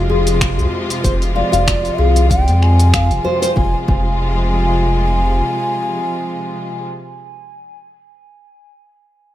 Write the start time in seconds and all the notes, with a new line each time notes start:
Already playing: F1 C3 F3 G#3 F4
0.09 G#4, djembe slap, djembe tone
0.27 open hi-hat, shaker
0.41 F4, finger snap, kick, open hi-hat, shaker
0.58 C2, djembe bass, shaker
0.72 djembe tone
0.90 open hi-hat, djembe slap, djembe tone, shaker
1.04 F1 C5, kick, open hi-hat, shaker
1.21 open hi-hat, djembe tone, shaker
1.36 D5 F5, djembe slap
1.52 F1 F5, open hi-hat, djembe bass, shaker
1.67 F4, finger snap, kick, open hi-hat, shaker
1.85 open hi-hat, shaker
1.98 C2 G#4 F5, djembe slap, djembe tone
2.15 open hi-hat, djembe slap, shaker
2.30 F4 G5, kick, open hi-hat, shaker
2.48 F2, open hi-hat, shaker
2.62 G#5, finger snap
2.79 open hi-hat, shaker
2.93 F5, finger snap, kick, open hi-hat, shaker
3.11 F1, open hi-hat, shaker
3.24 C5, djembe tone, djembe bass
3.42 C5, open hi-hat, shaker
3.56 F1 C3 F3 G#3 F4 G#5, kick
3.88 F1 F4 G#5, kick